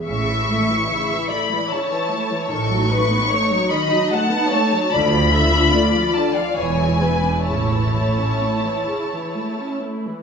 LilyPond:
<<
  \new Staff \with { instrumentName = "Violin section" } { \time 3/4 \key a \major \tempo 4 = 74 cis'''4. b''8 a''4 | cis'''4. b''8 a''4 | b''4. a''16 f''16 gis''4 | a''2~ a''8 r8 | }
  \new Staff \with { instrumentName = "Violin section" } { \time 3/4 \key a \major e''4 e''8 d''8 cis''4 | a'8 b'8 cis''8 dis''8 fis''8 cis''8 | d''8 e''8 d''4 cis''8 b'8 | cis''2~ cis''8 r8 | }
  \new Staff \with { instrumentName = "Viola section" } { \clef bass \time 3/4 \key a \major << { e'2. | dis'2. | f'2 e'4~ | e'2~ e'8. r16 | } \\ { cis16 e16 a16 e16 cis16 e16 a16 e16 cis16 e16 a16 e16 | dis16 fis16 a16 b16 a16 fis16 dis16 fis16 a16 b16 a16 fis16 | d16 f16 a16 d'16 a16 f16 d16 f16 e16 gis16 b16 d'16 | cis16 e16 a16 cis'16 a16 e16 cis16 e16 a16 cis'16 a16 e16 | } >> }
  \new Staff \with { instrumentName = "Cello section" } { \clef bass \time 3/4 \key a \major a,4 r2 | a,4 r2 | d,4 r4 e,4 | a,4 r2 | }
  \new Staff \with { instrumentName = "Double bass section" } { \clef bass \time 3/4 \key a \major a,,4 r2 | a,,4 r2 | d,4 r4 e,,4 | a,,4 r2 | }
>>